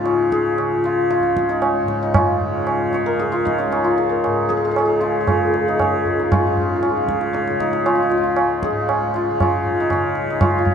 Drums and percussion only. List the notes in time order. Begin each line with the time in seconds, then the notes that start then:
0.06 tabla na
0.32 tabla ke
0.58 tabla na
0.84 tabla te
1.11 tabla te
1.23 tabla te
1.37 tabla ke
1.49 tabla te
1.62 tabla na
1.88 tabla ke
2.14 tabla na, tabla ge
2.41 tabla ge
2.67 tabla na
2.93 tabla te
3.20 tabla te
3.33 tabla te
3.47 tabla ke
3.60 tabla te
3.73 tabla na
3.98 tabla te
4.24 tabla na
4.50 tabla ke
4.76 tabla na
5.01 tabla te
5.27 tabla na, tabla ge
5.54 tabla te
5.80 tabla na, tabla ge
6.05 tabla ge
6.32 tabla na, tabla ge
6.57 tabla ge
6.83 tabla na
7.08 tabla ke
7.21 tabla te
7.34 tabla te
7.47 tabla te
7.60 tabla ke
7.73 tabla te
7.86 tabla na
8.12 tabla te
8.37 tabla na
8.63 tabla ke
8.89 tabla na
9.14 tabla te
9.40 tabla na, tabla ge
9.66 tabla ge
9.90 tabla na, tabla ge
10.15 tabla te
10.41 tabla na, tabla ge
10.66 tabla ge